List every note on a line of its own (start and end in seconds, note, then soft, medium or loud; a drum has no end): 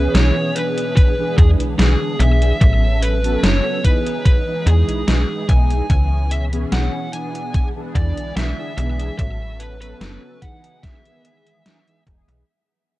0.00 0.95 B2 medium
0.00 0.51 E3 loud
0.00 0.51 B3 medium
0.00 0.95 B3 medium
0.00 0.51 C#4 medium
0.00 0.51 G#4 loud
0.00 2.57 G#4 medium
0.00 0.16 B4 medium
0.14 0.32 B1 medium
0.14 0.57 C#5 loud
0.14 snare loud
0.14 closed hi-hat medium
0.55 1.13 E3 medium
0.55 1.13 B3 medium
0.55 1.13 D4 medium
0.55 1.14 G#4 medium
0.55 0.95 B4 medium
0.55 closed hi-hat medium
0.78 closed hi-hat soft
0.96 2.60 D3 medium
0.96 2.60 G#3 medium
0.96 1.37 B4 loud
0.96 kick loud
0.96 closed hi-hat medium
1.18 1.75 E3 medium
1.18 1.75 B3 medium
1.18 1.75 D4 medium
1.18 1.76 G#4 loud
1.38 1.55 E2 loud
1.38 1.49 G#4 medium
1.38 kick loud
1.38 closed hi-hat medium
1.60 1.75 B1 soft
1.60 closed hi-hat soft
1.78 1.96 B1 medium
1.78 1.91 E3 loud
1.78 1.92 B3 medium
1.78 1.92 D4 medium
1.78 2.21 G#4 loud
1.78 1.92 G#4 loud
1.78 snare loud
1.78 closed hi-hat medium
2.00 2.15 E3 medium
2.00 2.15 B3 medium
2.00 2.16 D4 medium
2.00 2.16 G#4 loud
2.19 2.53 B1 loud
2.19 2.56 E3 medium
2.19 2.56 B3 medium
2.19 2.56 D4 medium
2.19 2.57 G#4 loud
2.19 2.60 E5 loud
2.19 closed hi-hat medium
2.42 closed hi-hat soft
2.61 3.37 A1 loud
2.61 4.24 C#3 medium
2.61 3.19 F#3 medium
2.61 3.19 B3 medium
2.61 4.24 B3 medium
2.61 3.19 C#4 medium
2.61 4.24 F#4 medium
2.61 3.19 A4 medium
2.61 3.03 E5 loud
2.61 kick loud
2.61 closed hi-hat medium
3.02 3.45 B4 loud
3.02 closed hi-hat medium
3.23 3.79 F#3 loud
3.23 3.80 B3 medium
3.23 3.80 C#4 medium
3.23 3.80 A4 loud
3.23 closed hi-hat medium
3.43 3.60 F#1 medium
3.43 3.82 C#5 loud
3.43 snare loud
3.43 closed hi-hat medium
3.83 4.42 E3 medium
3.83 4.42 B3 medium
3.83 4.42 D#4 medium
3.83 4.42 G#4 medium
3.83 4.25 B4 loud
3.83 kick medium
3.83 closed hi-hat medium
4.07 closed hi-hat soft
4.25 5.88 G#3 medium
4.25 4.67 B4 loud
4.25 kick loud
4.25 closed hi-hat medium
4.46 5.03 E3 medium
4.46 5.03 B3 medium
4.46 5.04 D#4 medium
4.46 5.04 G#4 medium
4.66 4.84 E2 loud
4.66 5.07 G#4 medium
4.66 closed hi-hat medium
4.88 5.04 B1 soft
4.88 closed hi-hat soft
5.06 5.25 B1 medium
5.06 5.20 E3 loud
5.06 5.20 B3 medium
5.06 5.20 D#4 medium
5.06 5.21 G#4 loud
5.06 5.46 G#4 medium
5.06 snare loud
5.06 closed hi-hat medium
5.28 5.44 E3 medium
5.28 5.44 B3 medium
5.28 5.44 D#4 medium
5.28 5.44 G#4 medium
5.48 5.82 B1 loud
5.48 5.85 E3 loud
5.48 5.85 B3 medium
5.48 5.85 D#4 medium
5.48 5.86 G#4 loud
5.48 5.89 G#5 loud
5.48 kick loud
5.48 closed hi-hat medium
5.70 closed hi-hat soft
5.89 6.65 C#2 loud
5.89 7.53 B2 medium
5.89 6.47 E3 medium
5.89 6.47 B3 medium
5.89 7.53 B3 medium
5.89 6.48 C#4 medium
5.89 9.16 E4 medium
5.89 6.48 G#4 medium
5.89 6.28 G#5 loud
5.89 kick loud
5.89 closed hi-hat medium
6.31 6.43 E5 loud
6.31 closed hi-hat medium
6.51 7.08 E3 loud
6.51 7.08 B3 medium
6.51 7.08 C#4 medium
6.51 7.09 G#4 loud
6.51 closed hi-hat medium
6.72 6.89 B1 medium
6.72 7.11 F#5 loud
6.72 snare loud
6.72 closed hi-hat medium
7.12 7.70 E3 medium
7.12 7.70 B3 medium
7.12 7.71 D4 medium
7.12 7.71 G#4 medium
7.12 7.52 G#5 loud
7.12 closed hi-hat medium
7.35 closed hi-hat soft
7.54 9.17 D3 medium
7.54 9.17 G#3 medium
7.54 7.66 G#5 loud
7.54 kick loud
7.54 closed hi-hat medium
7.75 8.32 E3 medium
7.75 8.32 B3 medium
7.75 8.33 D4 medium
7.75 8.33 G#4 medium
7.95 8.12 E2 loud
7.95 8.34 D5 loud
7.95 kick loud
7.95 closed hi-hat medium
8.17 8.33 B1 soft
8.17 closed hi-hat medium
8.36 8.54 B1 medium
8.36 8.49 E3 loud
8.36 8.49 B3 medium
8.36 8.49 D4 medium
8.36 8.49 G#4 loud
8.36 8.76 E5 loud
8.36 snare loud
8.36 closed hi-hat medium
8.57 8.72 E3 medium
8.57 8.73 B3 medium
8.57 8.73 D4 medium
8.57 8.73 G#4 loud
8.77 9.10 B1 loud
8.77 9.14 E3 loud
8.77 9.14 B3 medium
8.77 9.14 D4 medium
8.77 9.14 G#4 loud
8.77 9.17 E5 loud
8.77 closed hi-hat medium
9.00 closed hi-hat soft
9.18 9.94 A1 loud
9.18 10.82 C#3 medium
9.18 9.76 F#3 medium
9.18 9.76 B3 medium
9.18 10.82 B3 medium
9.18 9.77 C#4 medium
9.18 10.82 F#4 medium
9.18 9.77 A4 medium
9.18 9.61 E5 loud
9.18 kick loud
9.18 closed hi-hat medium
9.60 9.80 B4 loud
9.60 closed hi-hat medium
9.81 10.37 F#3 loud
9.81 10.38 B3 medium
9.81 10.38 C#4 medium
9.81 10.38 A4 loud
9.81 10.44 B4 loud
9.81 closed hi-hat medium
10.01 10.18 F#1 medium
10.01 snare loud
10.01 closed hi-hat medium
10.42 10.99 E3 medium
10.42 11.00 B3 medium
10.42 11.00 D#4 medium
10.42 11.00 G#4 medium
10.42 10.84 F#5 loud
10.42 kick medium
10.42 closed hi-hat medium
10.64 closed hi-hat medium
10.83 12.46 G#3 medium
10.83 12.02 E5 medium
10.83 kick loud
10.83 snare medium
10.83 closed hi-hat medium
11.04 11.62 D#3 medium
11.04 11.61 E3 medium
11.04 11.61 B3 medium
11.04 11.62 G#4 medium
11.04 closed hi-hat soft
11.25 closed hi-hat medium
11.47 closed hi-hat medium
11.65 11.78 E3 loud
11.65 11.78 B3 medium
11.65 11.78 D#4 medium
11.65 11.78 G#4 loud
11.65 snare loud
11.65 closed hi-hat medium
11.87 12.02 E3 medium
11.87 12.02 B3 medium
11.87 12.02 D#4 medium
11.87 12.02 G#4 loud
11.87 closed hi-hat soft
12.06 12.24 E1 loud
12.06 12.43 E3 medium
12.06 12.43 B3 medium
12.06 12.43 D#4 medium
12.06 12.43 G#4 loud
12.06 kick loud
12.06 closed hi-hat medium
12.28 12.43 B1 medium
12.28 closed hi-hat medium